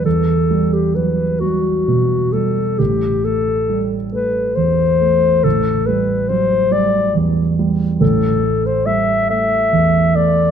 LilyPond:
<<
  \new Staff \with { instrumentName = "Clarinet" } { \time 6/8 \key a \dorian \tempo 4. = 46 a'8. g'16 b'8 fis'4 a'8 | g'8 a'8. r16 b'8 c''4 | a'8 b'8 c''8 d''8 r4 | a'8. c''16 e''8 e''4 d''8 | }
  \new Staff \with { instrumentName = "Grand piano" } { \clef bass \time 6/8 \key a \dorian e,8 g8 fis8 g8 b,8 g8 | a,,8 a8 g8 a8 e,8 a8 | a,,8 g8 fis8 g8 e,8 g8 | a,,8 a8 g8 a8 e,8 a8 | }
>>